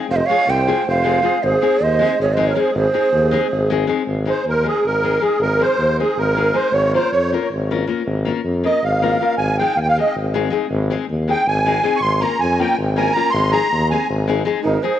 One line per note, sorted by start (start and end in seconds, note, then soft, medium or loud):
0.09 0.22 F1 loud
0.09 0.15 C5 loud
0.09 0.18 F5 loud
0.16 0.24 C5 medium
0.16 0.28 D#5 medium
0.26 0.43 G#3 medium
0.26 0.48 C#5 loud
0.26 0.51 F5 loud
0.30 0.43 C4 medium
0.30 0.44 F4 medium
0.30 0.44 G#4 medium
0.47 0.71 C2 medium
0.47 0.86 C5 medium
0.47 0.88 G5 loud
0.67 0.82 G#3 medium
0.67 0.82 C4 medium
0.67 0.82 F4 medium
0.67 0.82 G#4 medium
0.87 1.20 F1 medium
0.87 1.38 C5 medium
0.87 1.45 F5 loud
1.04 1.18 G#3 medium
1.04 1.19 C4 medium
1.04 1.19 F4 medium
1.04 1.19 G#4 medium
1.22 1.36 G#3 medium
1.22 1.37 C4 medium
1.22 1.37 F4 medium
1.22 1.38 G#4 medium
1.43 1.55 G#1 loud
1.43 1.82 G#4 loud
1.43 1.85 C5 loud
1.62 1.76 G#3 medium
1.62 1.76 C4 medium
1.62 1.76 D#4 medium
1.62 1.76 G#4 medium
1.81 2.04 D#2 medium
1.81 2.20 C5 medium
1.81 2.21 D#5 loud
1.99 2.14 G#3 medium
1.99 2.14 C4 medium
1.99 2.15 D#4 medium
1.99 2.15 G#4 medium
2.19 2.52 G#1 medium
2.19 2.32 G#4 medium
2.19 2.35 C#5 medium
2.33 2.51 G#3 medium
2.33 2.45 C5 medium
2.33 2.49 D#5 medium
2.37 2.51 C4 medium
2.37 2.52 D#4 medium
2.37 2.52 G#4 medium
2.48 2.58 A#4 medium
2.48 2.62 C#5 loud
2.55 2.69 G#3 medium
2.55 2.70 C4 medium
2.55 2.70 D#4 medium
2.55 2.70 G#4 medium
2.60 2.76 G#4 medium
2.60 2.75 C5 loud
2.75 2.87 G#1 loud
2.75 3.68 C5 loud
2.79 3.70 G#4 medium
2.94 3.08 G#3 medium
2.94 3.08 C4 medium
2.94 3.08 D#4 medium
2.94 3.09 G#4 medium
3.12 3.36 D#2 medium
3.31 3.46 G#3 medium
3.31 3.47 C4 medium
3.31 3.47 D#4 medium
3.31 3.47 G#4 medium
3.51 3.85 G#1 medium
3.70 3.84 G#3 medium
3.70 3.85 C4 medium
3.70 3.85 D#4 medium
3.70 3.85 G#4 medium
3.87 4.01 G#3 medium
3.87 4.02 C4 medium
3.87 4.02 D#4 medium
3.87 4.03 G#4 medium
4.07 4.30 G#1 medium
4.25 4.40 G#3 medium
4.25 4.41 C4 medium
4.25 4.41 D#4 medium
4.25 4.41 G#4 medium
4.30 4.46 C5 medium
4.45 4.69 D#2 medium
4.45 4.67 A#4 medium
4.63 4.79 G#3 medium
4.63 4.79 C4 medium
4.63 4.80 D#4 medium
4.63 4.80 G#4 medium
4.68 4.86 G#4 medium
4.85 5.18 G#1 medium
4.85 5.24 A#4 medium
5.03 5.17 G#3 medium
5.03 5.17 C4 medium
5.03 5.18 D#4 medium
5.03 5.18 G#4 medium
5.20 5.34 G#3 medium
5.20 5.35 C4 medium
5.20 5.35 D#4 soft
5.20 5.35 G#4 medium
5.20 5.41 G#4 medium
5.39 5.63 G#1 medium
5.39 5.62 A#4 medium
5.59 5.74 G#3 medium
5.59 5.74 C4 medium
5.59 5.75 D#4 medium
5.59 5.75 G#4 medium
5.59 5.97 C5 medium
5.78 6.01 D#2 medium
5.99 6.13 G#3 medium
5.99 6.13 C4 medium
5.99 6.14 D#4 medium
5.99 6.14 G#4 medium
5.99 6.19 G#4 medium
6.17 6.51 G#1 medium
6.17 6.56 A#4 medium
6.35 6.50 G#3 medium
6.35 6.51 C4 medium
6.35 6.51 D#4 medium
6.35 6.51 G#4 medium
6.53 6.68 G#3 medium
6.53 6.68 C4 medium
6.53 6.68 D#4 medium
6.53 6.68 G#4 medium
6.53 6.73 C5 medium
6.72 6.96 G#1 loud
6.72 6.92 C#5 medium
6.94 7.08 A#3 medium
6.94 7.08 C#4 medium
6.94 7.08 F4 medium
6.94 7.08 A#4 medium
6.94 7.11 C5 medium
7.12 7.35 F2 medium
7.12 7.31 C#5 medium
7.32 7.46 A#3 medium
7.32 7.47 C#4 medium
7.32 7.47 F4 medium
7.32 7.47 A#4 medium
7.51 7.84 G#1 medium
7.71 7.84 A#3 medium
7.71 7.84 C#4 medium
7.71 7.84 F4 medium
7.71 7.84 A#4 medium
7.87 8.01 A#3 medium
7.87 8.01 C#4 medium
7.87 8.02 F4 medium
7.87 8.02 A#4 medium
8.06 8.29 G#1 medium
8.25 8.40 A#3 medium
8.25 8.40 C#4 medium
8.25 8.40 F4 medium
8.25 8.41 A#4 medium
8.44 8.68 F2 medium
8.64 8.78 A#3 medium
8.64 8.78 C#4 medium
8.64 8.79 F4 soft
8.64 8.79 A#4 medium
8.64 8.84 D#5 medium
8.82 9.16 G#1 medium
8.82 9.35 F5 medium
9.02 9.16 A#3 medium
9.02 9.16 C#4 medium
9.02 9.16 F4 medium
9.02 9.17 A#4 medium
9.20 9.34 A#3 medium
9.20 9.34 C#4 medium
9.20 9.35 F4 medium
9.20 9.35 A#4 medium
9.37 9.61 G#1 medium
9.37 9.57 G#5 medium
9.58 9.73 G#3 medium
9.58 9.73 C4 medium
9.58 9.74 D#4 medium
9.58 9.74 G#4 medium
9.58 9.77 G5 medium
9.76 10.00 D#2 medium
9.76 9.79 F5 medium
9.83 9.88 G5 medium
9.89 9.98 F5 medium
9.98 10.11 G#3 medium
9.98 10.12 C4 soft
9.98 10.12 D#4 medium
9.98 10.12 G#4 medium
9.98 10.16 D#5 medium
10.15 10.48 G#1 medium
10.34 10.48 G#3 medium
10.34 10.48 C4 medium
10.34 10.49 D#4 medium
10.34 10.49 G#4 medium
10.50 10.65 G#3 medium
10.50 10.65 C4 medium
10.50 10.66 D#4 medium
10.50 10.66 G#4 medium
10.71 10.94 G#1 loud
10.90 11.04 G#3 medium
10.90 11.05 C4 medium
10.90 11.05 D#4 medium
10.90 11.05 G#4 medium
11.09 11.32 D#2 medium
11.28 11.42 G#3 medium
11.28 11.43 C4 medium
11.28 11.43 D#4 medium
11.28 11.43 G#4 medium
11.28 11.47 G5 medium
11.46 11.79 G#1 medium
11.46 11.99 G#5 medium
11.66 11.80 G#3 medium
11.66 11.80 C4 medium
11.66 11.80 D#4 medium
11.66 11.81 G#4 medium
11.83 11.97 G#3 medium
11.83 11.98 C4 medium
11.83 11.98 D#4 medium
11.83 11.98 G#4 medium
11.96 12.01 C#6 medium
12.01 12.24 G#1 medium
12.01 12.23 C6 loud
12.21 12.35 A#3 medium
12.21 12.36 C#4 medium
12.21 12.36 F4 medium
12.21 12.36 A#4 medium
12.21 12.40 A#5 medium
12.39 12.63 F2 medium
12.39 12.59 G#5 loud
12.59 12.74 A#3 medium
12.59 12.74 C#4 medium
12.59 12.75 F4 medium
12.59 12.74 A#4 medium
12.59 12.77 G5 medium
12.78 13.11 G#1 medium
12.96 13.10 A#3 medium
12.96 13.11 C#4 medium
12.96 13.11 F4 medium
12.96 13.11 A#4 medium
12.96 13.13 G#5 medium
13.12 13.29 A#3 medium
13.12 13.32 A#5 loud
13.16 13.29 C#4 medium
13.16 13.29 F4 medium
13.16 13.29 A#4 medium
13.31 13.56 G#1 loud
13.31 13.51 C6 medium
13.52 13.66 G#3 medium
13.52 13.67 C4 medium
13.52 13.66 D#4 medium
13.52 13.67 G#4 medium
13.52 13.88 A#5 loud
13.72 13.95 D#2 medium
13.91 14.05 G#3 medium
13.91 14.05 C4 medium
13.91 14.05 D#4 medium
13.91 14.06 G#4 medium
13.91 14.08 G#5 medium
14.09 14.42 G#1 medium
14.27 14.41 G#3 medium
14.27 14.42 C4 medium
14.27 14.42 D#4 medium
14.27 14.42 G#4 loud
14.45 14.59 G#3 medium
14.45 14.59 C4 medium
14.45 14.60 D#4 medium
14.45 14.60 G#4 medium
14.64 14.76 G#1 loud
14.64 14.82 D#4 medium
14.64 14.84 A#4 medium
14.83 14.97 G#3 medium
14.83 14.97 C4 medium
14.83 14.97 D#4 medium
14.83 14.97 G#4 medium
14.83 14.99 G#4 medium
14.83 14.99 C5 medium